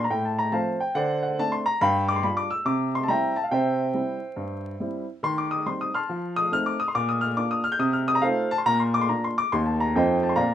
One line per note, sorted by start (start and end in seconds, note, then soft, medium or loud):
0.04 0.11 A#5 medium
0.10 0.47 A2 medium
0.10 0.24 G5 medium
0.25 0.39 A5 medium
0.39 0.53 A#5 medium
0.52 0.76 F3 soft
0.52 0.76 A3 soft
0.52 0.76 C4 soft
0.52 0.79 C5 medium
0.52 0.79 F5 soft
0.52 0.80 A5 medium
0.80 0.96 G5 medium
0.95 1.31 D3 medium
0.95 1.22 C5 medium
0.95 1.22 D5 medium
0.95 1.21 F#5 medium
1.23 1.38 F#5 medium
1.39 1.62 A3 soft
1.39 1.63 C4 soft
1.39 1.63 D4 soft
1.39 1.53 A5 medium
1.52 1.66 C6 medium
1.66 1.81 A#5 medium
1.81 2.18 G2 medium
1.81 2.08 F5 medium
1.81 2.08 G5 medium
1.81 2.09 B5 medium
2.08 2.16 D6 medium
2.16 2.24 C6 medium
2.23 2.47 G3 soft
2.23 2.47 D4 soft
2.23 2.47 F4 soft
2.23 2.38 B5 medium
2.37 2.51 D6 medium
2.50 2.66 E6 medium
2.65 3.02 C3 medium
2.65 2.94 D6 medium
2.95 3.02 C6 medium
3.03 3.10 A5 medium
3.08 3.32 G3 soft
3.08 3.33 C4 soft
3.08 3.33 E4 soft
3.08 3.36 E5 medium
3.08 3.36 G5 medium
3.08 3.37 A#5 medium
3.36 3.44 A5 medium
3.44 3.52 F5 soft
3.51 3.88 C3 medium
3.51 4.77 C5 medium
3.51 4.77 E5 medium
3.51 4.80 G5 medium
3.94 4.18 G3 soft
3.94 4.18 C4 soft
3.94 4.18 E4 soft
4.36 4.73 G2 medium
4.80 5.04 G3 soft
4.80 5.04 C4 soft
4.80 5.05 E4 soft
5.23 5.60 D#3 medium
5.23 5.38 C6 medium
5.38 5.52 D6 medium
5.51 5.66 D#6 medium
5.66 5.90 G3 soft
5.66 5.90 C4 soft
5.66 5.90 D#4 soft
5.66 5.80 C6 medium
5.81 5.95 D#6 medium
5.94 6.35 A5 medium
5.94 6.34 C6 medium
5.94 6.37 F6 medium
6.09 6.45 F3 medium
6.36 6.51 D#6 medium
6.52 6.75 A3 soft
6.52 6.75 C4 soft
6.52 6.76 D#4 soft
6.52 6.66 F6 medium
6.66 6.80 D6 medium
6.80 6.87 D#6 medium
6.88 6.95 C6 medium
6.95 7.31 A#2 medium
6.95 7.09 D6 medium
7.09 7.23 D#6 medium
7.21 7.37 F6 medium
7.37 7.60 A#3 soft
7.37 7.60 D4 soft
7.37 7.61 F4 soft
7.37 7.51 D6 medium
7.51 7.65 D#6 medium
7.64 7.72 F6 medium
7.72 7.80 G6 medium
7.79 8.16 C3 medium
7.79 7.94 D#6 medium
7.93 8.07 F6 medium
8.08 8.15 D#6 medium
8.15 8.23 A#5 medium
8.22 8.46 A3 soft
8.22 8.46 D#4 soft
8.22 8.46 F4 soft
8.22 8.49 A4 medium
8.22 8.49 C5 medium
8.22 8.50 F5 medium
8.51 8.58 A5 medium
8.58 8.66 C6 medium
8.66 9.02 A#2 medium
8.66 8.80 A#5 loud
8.80 8.94 C6 medium
8.94 9.01 D6 medium
9.01 9.09 C6 medium
9.09 9.32 A#3 soft
9.09 9.33 D4 soft
9.09 9.33 F4 soft
9.09 9.23 A#5 medium
9.24 9.37 C6 medium
9.38 9.52 D6 medium
9.52 9.88 D#2 medium
9.52 9.75 A#3 soft
9.52 9.76 D#4 soft
9.52 9.76 G4 soft
9.52 9.66 C6 medium
9.66 9.79 A5 medium
9.80 9.94 A#5 medium
9.95 10.31 F2 medium
9.95 10.19 F3 soft
9.95 10.19 D#4 soft
9.95 10.19 F4 soft
9.95 10.21 C5 medium
9.95 10.21 D#5 medium
9.95 10.23 G5 medium
10.23 10.30 A5 medium
10.29 10.37 C6 medium
10.36 10.54 A#2 medium
10.36 10.54 D5 medium
10.36 10.54 F5 medium
10.36 10.54 A#5 medium